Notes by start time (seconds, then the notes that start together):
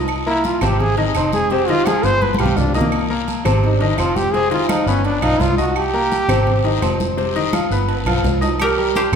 Already playing: C2 D#4 D#5 D#6
0.08 high conga, low agogo, long guiro, claves
0.26 A#3 E4 A#4 A#5, high conga
0.44 F4, high conga, low agogo, short guiro
0.61 G#1 C3 C4 G4 C5, low conga, low agogo, short guiro, claves
0.80 G#4, high conga, low conga, long guiro
0.97 D#3 C4 D#4 D#5, high conga, low agogo
1.15 F1 C4 D#4 C5 C6, high conga, low agogo, short guiro, claves
1.33 G#4, high conga, short guiro
1.50 C3 C4 G4 C5, high conga, low agogo, long guiro
1.68 D#3 D#4 F4 D#5, high conga, low agogo
1.86 F3 F4 G#4 F5, high conga, low agogo, short guiro, claves
2.03 G1 B3 B4 C5 B5, short guiro
2.21 B4, high conga, low agogo, long guiro
2.34 high conga
2.38 B1 F3 F4 G4 F5, low agogo, claves
2.46 low conga
2.57 C2 D4, low conga, low timbale, short guiro
2.74 A#3 D#4 D#5 D#6, low agogo, short guiro
2.81 low conga
2.92 high conga, low agogo, long guiro, claves
3.10 A#3 A#4 A#5, high conga
3.28 high conga, low agogo, short guiro
3.45 G#1 C3 C4 C5, low conga, low agogo, short guiro, claves
3.63 D#4, high conga, low conga, long guiro
3.75 D4
3.81 D#3 D#4 D#5, high conga, low agogo
3.87 D#4
3.98 F1 C4 F4 C5 C6, high conga, low agogo, short guiro, claves
4.16 G4, high conga, short guiro
4.33 C3 C4 G#4 C5, high conga, low agogo, long guiro
4.51 D#3 D#4 F4 D#5, high conga, low agogo
4.69 F3 D#4 F4 F5, high conga, low agogo, short guiro, claves
4.86 G1 B3 C#4 B4 B5, short guiro
5.05 D4, high conga, low agogo, long guiro
5.22 B1 F3 D#4 F4 F5, high conga, low agogo, claves
5.39 C2 F4, high conga, low timbale, short guiro
5.58 D#4 F#4 D#5 D#6, high conga, low agogo, short guiro
5.76 G4, high conga, low agogo, long guiro, claves
5.94 A#3 A#4 A#5, high conga
6.12 high conga, low agogo, short guiro
6.28 G#1 C3 C4 C5, low conga, low agogo, short guiro, claves
6.47 high conga, low conga, long guiro
6.64 D#3 D#4 D#5, high conga, low agogo
6.81 F1 C4 C5 C6, high conga, low timbale, low agogo, short guiro, claves
7.00 high conga, short guiro
7.17 C3 C4 C5, high conga, low agogo, long guiro
7.36 D#3 D#4 D#5, high conga, low agogo
7.53 F3 F4 F5, high conga, low agogo, short guiro, claves
7.70 G1 B3 B4 B5, short guiro
7.88 high conga, high timbale, low agogo, long guiro
8.05 B1 F3 F4 F5, high conga, high timbale, low agogo, claves
8.23 C2, high conga, low timbale, short guiro
8.41 D#4 D#5 D#6, high conga, low timbale, low agogo, short guiro
8.60 G4 A#4, high conga, low agogo, long guiro, claves
8.77 G3 G4 A#4, high conga
8.95 G4 C5, high conga, low agogo, short guiro
9.12 G#1